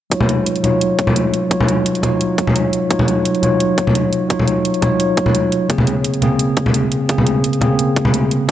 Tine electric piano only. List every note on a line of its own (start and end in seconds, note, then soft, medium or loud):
0.10 0.61 F#3 medium
0.10 0.62 D#4 medium
0.10 0.62 F4 medium
0.10 0.63 C#5 medium
0.62 1.48 F#3 medium
0.62 1.49 D#4 medium
0.62 1.49 F4 medium
0.62 1.50 C#5 medium
1.50 2.01 F#3 medium
1.50 2.01 D#4 medium
1.50 2.02 F4 medium
1.50 2.02 C#5 medium
2.02 2.88 F#3 medium
2.02 2.88 D#4 medium
2.02 2.89 F4 medium
2.02 2.89 C#5 medium
2.89 3.40 F#3 medium
2.89 3.41 D#4 medium
2.89 3.41 F4 medium
2.89 3.42 C#5 medium
3.41 4.27 F#3 medium
3.41 4.28 D#4 medium
3.41 4.28 F4 medium
3.41 4.29 C#5 medium
4.29 4.80 F#3 medium
4.29 4.80 D#4 medium
4.29 4.81 F4 medium
4.29 4.81 C#5 medium
4.81 5.67 F#3 medium
4.81 5.67 D#4 medium
4.81 5.68 F4 medium
4.81 5.68 C#5 medium
5.68 6.19 C#3 medium
5.68 6.20 A#3 medium
5.68 6.20 C4 medium
5.68 6.21 G#4 medium
6.20 7.06 C#3 medium
6.20 7.07 A#3 medium
6.20 7.07 C4 medium
6.20 7.08 G#4 medium
7.08 7.59 C#3 medium
7.08 7.59 A#3 medium
7.08 7.60 C4 medium
7.08 7.60 G#4 medium
7.60 8.46 C#3 medium
7.60 8.46 A#3 medium
7.60 8.47 C4 medium
7.60 8.47 G#4 medium
8.47 8.51 C#3 medium
8.47 8.51 A#3 medium